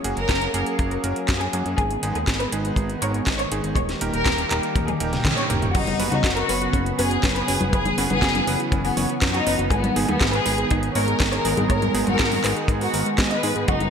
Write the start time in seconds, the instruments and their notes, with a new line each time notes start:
Already playing: analog synth pad F#3 A#3 C#4 G#4, violin section C#5
0.04 analog synth bass F#1, electric grand piano A#3 C#4 F#4 G#4, closed hi-hat
0.17 analog synth bass F#1, violin section A#4, closed hi-hat
0.29 analog synth bass F#1, kick, snare, clap, closed hi-hat
0.42 closed hi-hat
0.54 analog synth bass F#1, electric grand piano A#3 C#4 F#4 G#4, closed hi-hat
0.66 closed hi-hat
0.79 analog synth bass F#1, kick, closed hi-hat
0.91 violin section A#4, closed hi-hat
1.04 analog synth bass F#1, electric grand piano A#3 C#4 F#4 A#4, closed hi-hat
1.16 closed hi-hat
1.29 analog synth bass F#2, kick, snare, clap, closed hi-hat
1.41 violin section G#4, closed hi-hat
1.53 analog synth bass F#2, electric grand piano A#3 C#4 F#4 G#4, closed hi-hat
1.66 analog synth bass F#2, closed hi-hat
1.78 analog synth bass G#1, analog synth pad D#3 G#3 B3, violin section G#4, kick, closed hi-hat
1.91 closed hi-hat
2.03 analog synth bass G#1, electric grand piano G#3 B3 D#4 G#4, closed hi-hat
2.15 analog synth bass D#2, violin section G#4, closed hi-hat
2.28 analog synth bass G#1, kick, snare, clap, closed hi-hat
2.40 violin section B4, closed hi-hat
2.52 analog synth bass G#1, electric grand piano G#3 B3 D#4 G#4, closed hi-hat
2.65 closed hi-hat
2.76 analog synth bass G#1, kick, closed hi-hat
2.90 closed hi-hat
3.02 analog synth bass G#1, electric grand piano G#3 B3 D#4 A#4, violin section C#5, closed hi-hat
3.14 closed hi-hat
3.27 analog synth bass G#1, kick, snare, clap, closed hi-hat
3.39 violin section C#5, closed hi-hat
3.52 analog synth bass G#1, electric grand piano G#3 B3 D#4 G#4, closed hi-hat
3.64 analog synth bass G#1, closed hi-hat
3.75 analog synth bass D#1, analog synth pad G3 A#3 G4, violin section C#5, kick, closed hi-hat
3.89 snare, closed hi-hat
4.01 analog synth bass D#1, electric grand piano A#3 D#4 G4 A#4, closed hi-hat
4.14 analog synth bass D#1, violin section A#4, closed hi-hat
4.26 analog synth bass D#1, kick, snare, clap, closed hi-hat
4.38 closed hi-hat
4.51 analog synth bass D#1, electric grand piano A#3 D#4 G4 A#4, clap, closed hi-hat
4.63 closed hi-hat
4.76 analog synth bass D#1, kick, closed hi-hat, high tom
4.88 violin section G#4, closed hi-hat, high tom
5.00 analog synth bass D#1, electric grand piano A#3 D#4 G4 A#4, closed hi-hat
5.13 snare, closed hi-hat, mid tom
5.25 analog synth bass D#2, kick, snare, clap, closed hi-hat, mid tom
5.37 electric grand piano A#3 D#4 G4 C#5, violin section C#5, closed hi-hat
5.50 analog synth bass D#1, electric grand piano A#3 D#4 G4 A#4, closed hi-hat, mid tom
5.62 analog synth bass D#1, closed hi-hat, mid tom
5.75 analog synth bass F#1, analog synth pad C#3 F#3 B3 F#4, synth arpeggio sound F#3, violin section D#4 F#4, kick, closed hi-hat, crash
5.87 closed hi-hat, high conga
5.99 analog synth bass F#1, synth arpeggio sound B3, electric grand piano B3 C#4 F#4 B4, open hi-hat
6.12 analog synth bass C#2, synth arpeggio sound C#4, violin section D#4 F#4, closed hi-hat, high conga
6.24 analog synth bass F#1, synth arpeggio sound F#4, kick, snare, clap, closed hi-hat
6.37 violin section F#4 A#4, closed hi-hat
6.49 analog synth bass F#1, electric grand piano B3 C#4 F#4 B4, synth arpeggio sound B4, open hi-hat
6.62 synth arpeggio sound F#4, closed hi-hat
6.73 analog synth bass F#1, synth arpeggio sound C#4, kick, closed hi-hat
6.86 closed hi-hat
6.99 analog synth bass F#1, synth arpeggio sound B3, electric grand piano B3 C#4 F#4 C#5, violin section G#4 B4, open hi-hat
7.11 synth arpeggio sound F#3, closed hi-hat
7.23 analog synth bass F#1, synth arpeggio sound B3, kick, snare, clap, closed hi-hat
7.36 violin section G#4 B4, closed hi-hat
7.48 analog synth bass F#1, electric grand piano B3 C#4 F#4 B4, synth arpeggio sound C#4, open hi-hat
7.61 analog synth bass F#1, synth arpeggio sound F#4, closed hi-hat, high conga
7.73 analog synth bass F#1, analog synth pad E3, synth arpeggio sound F#3, violin section G#4 B4, kick, closed hi-hat
7.85 closed hi-hat, high conga
7.98 analog synth bass F#1, synth arpeggio sound B3, electric grand piano B3 C#4 F#4 B4, open hi-hat
8.10 analog synth bass F#1, violin section B3 G#4, synth arpeggio sound C#4, closed hi-hat, high conga
8.22 analog synth bass F#1, synth arpeggio sound F#4, kick, snare, clap, closed hi-hat
8.35 closed hi-hat, high conga
8.47 analog synth bass F#1, electric grand piano B3 C#4 F#4 B4, synth arpeggio sound B4, open hi-hat
8.60 synth arpeggio sound F#4, closed hi-hat
8.72 analog synth bass F#1, synth arpeggio sound C#4, kick, closed hi-hat
8.85 violin section B3 G#4, open hi-hat
8.97 analog synth bass F#1, electric grand piano B3 C#4 F#4 C#5, synth arpeggio sound B3, open hi-hat
9.09 synth arpeggio sound F#3, closed hi-hat
9.22 analog synth bass F#2, synth arpeggio sound B3, kick, snare, clap, closed hi-hat
9.34 violin section D#4 F#4, closed hi-hat
9.47 analog synth bass F#1, electric grand piano B3 C#4 F#4 B4, synth arpeggio sound C#4, open hi-hat
9.59 analog synth bass F#1, synth arpeggio sound F#4, closed hi-hat
9.71 analog synth bass G#1, analog synth pad D#3 G#3 G#4, synth arpeggio sound G#3, violin section B3 G#4, kick, closed hi-hat
9.84 closed hi-hat, high conga
9.96 analog synth bass G#1, electric grand piano G#3 B3 D#4 G#4, synth arpeggio sound B3, open hi-hat
10.08 analog synth bass D#2, violin section B3 G#4, synth arpeggio sound D#4, closed hi-hat, high conga
10.21 analog synth bass G#1, synth arpeggio sound G#4, kick, snare, clap, closed hi-hat
10.33 violin section G#4 B4, closed hi-hat
10.46 analog synth bass G#1, electric grand piano G#3 B3 D#4 G#4, synth arpeggio sound B4, open hi-hat
10.58 synth arpeggio sound G#4, closed hi-hat
10.71 analog synth bass G#1, synth arpeggio sound D#4, kick, closed hi-hat
10.83 closed hi-hat
10.95 analog synth bass G#1, electric grand piano G#3 B3 D#4 A#4, synth arpeggio sound B3, violin section A#4 C#5, open hi-hat
11.08 synth arpeggio sound G#3, closed hi-hat
11.20 analog synth bass G#1, synth arpeggio sound B3, kick, snare, clap, closed hi-hat
11.32 violin section A#4 C#5, closed hi-hat
11.45 analog synth bass G#1, electric grand piano G#3 B3 D#4 G#4, synth arpeggio sound D#4, open hi-hat
11.57 analog synth bass G#1, synth arpeggio sound G#4, closed hi-hat, high conga
11.70 analog synth bass G#1, synth arpeggio sound G#3, violin section A#4 C#5, kick, closed hi-hat
11.82 closed hi-hat, high conga
11.94 analog synth bass G#1, electric grand piano G#3 B3 D#4 G#4, synth arpeggio sound B3, open hi-hat
12.07 analog synth bass G#1, synth arpeggio sound D#4, violin section F#4 A#4, closed hi-hat, high conga
12.19 analog synth bass G#1, synth arpeggio sound G#4, kick, snare, clap, closed hi-hat
12.32 open hi-hat, high conga
12.44 analog synth bass G#1, electric grand piano G#3 B3 D#4 G#4, synth arpeggio sound B4, clap, open hi-hat
12.56 synth arpeggio sound G#4, closed hi-hat
12.68 analog synth bass G#2, synth arpeggio sound D#4, kick, closed hi-hat
12.81 violin section F#4 A#4, open hi-hat
12.94 analog synth bass G#1, electric grand piano G#3 B3 D#4 A#4, synth arpeggio sound B3, open hi-hat
13.06 synth arpeggio sound G#3, closed hi-hat
13.18 analog synth bass G#2, synth arpeggio sound B3, kick, snare, clap, closed hi-hat
13.31 violin section B4 D#5, closed hi-hat
13.43 analog synth bass G#2, electric grand piano G#3 B3 D#4 G#4, synth arpeggio sound D#4, open hi-hat
13.56 analog synth bass G#2, synth arpeggio sound G#4, closed hi-hat
13.68 analog synth bass F#1, analog synth pad C#3 F#3 F#4, synth arpeggio sound F#3, violin section D#4 F#4, kick, closed hi-hat
13.80 closed hi-hat, high conga